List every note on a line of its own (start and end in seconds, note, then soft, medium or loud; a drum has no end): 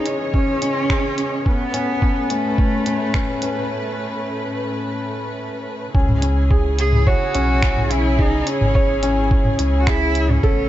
0.00 1.42 C#3 medium
0.00 1.42 E3 medium
0.00 1.42 G#3 medium
0.00 0.34 C#4 medium
0.00 0.90 G#4 medium
0.00 1.42 C#5 medium
0.06 1.47 C#4 loud
0.06 closed hi-hat medium
0.34 0.50 C#4 medium
0.34 kick medium
0.48 mid tom medium
0.62 0.78 C#4 medium
0.62 closed hi-hat medium
0.90 1.17 G#4 medium
0.90 finger snap medium
0.90 kick loud
1.18 closed hi-hat medium
1.32 mid tom medium
1.45 5.90 A2 medium
1.45 5.90 A3 medium
1.45 2.31 B3 loud
1.45 5.90 C#4 medium
1.45 1.62 C#4 medium
1.45 5.90 B4 medium
1.45 kick loud
1.74 1.90 C#4 medium
1.74 closed hi-hat medium
2.02 2.18 C#4 medium
2.02 kick loud
2.16 mid tom medium
2.30 3.70 A3 loud
2.30 2.46 C#4 medium
2.30 closed hi-hat medium
2.58 2.74 C#4 medium
2.58 kick loud
2.86 3.02 C#4 medium
2.86 closed hi-hat medium
3.00 mid tom medium
3.14 3.30 C#4 medium
3.14 finger snap medium
3.14 kick loud
3.42 3.58 C#4 medium
3.42 closed hi-hat medium
5.94 7.17 C#2 loud
5.94 10.69 C#3 medium
5.94 6.11 C#4 medium
5.94 10.39 C#4 medium
5.94 10.39 E4 medium
5.94 10.39 G#4 medium
5.94 kick loud
6.09 mid tom medium
6.22 6.39 C#4 medium
6.22 closed hi-hat medium
6.51 6.77 G#4 medium
6.51 kick loud
6.79 7.08 G#4 loud
6.79 closed hi-hat medium
6.93 mid tom medium
7.07 7.92 F#4 loud
7.07 7.33 C#5 loud
7.07 kick loud
7.35 8.43 B1 loud
7.35 7.51 C#4 loud
7.35 closed hi-hat medium
7.63 7.79 C#4 medium
7.63 finger snap medium
7.63 kick loud
7.77 mid tom medium
7.91 8.07 C#4 medium
7.91 8.20 E4 loud
7.91 closed hi-hat medium
8.19 8.48 D#4 loud
8.19 8.46 G#4 medium
8.19 kick loud
8.47 9.59 C#4 loud
8.47 closed hi-hat medium
8.61 9.55 G#1 loud
8.61 mid tom medium
8.75 9.02 C#5 loud
8.75 kick loud
9.03 9.19 C#4 medium
9.03 closed hi-hat medium
9.31 9.47 C#4 medium
9.31 kick loud
9.45 mid tom medium
9.59 10.39 C#2 loud
9.59 9.75 C#4 medium
9.59 closed hi-hat medium
9.80 9.89 F#4 medium
9.87 10.31 E4 loud
9.87 10.14 G#4 medium
9.87 finger snap medium
9.87 kick loud
10.15 closed hi-hat medium
10.29 10.69 C#4 loud
10.29 mid tom medium
10.43 10.69 A1 loud
10.43 10.69 A3 medium
10.43 10.69 B3 medium
10.43 10.69 A4 loud
10.43 kick loud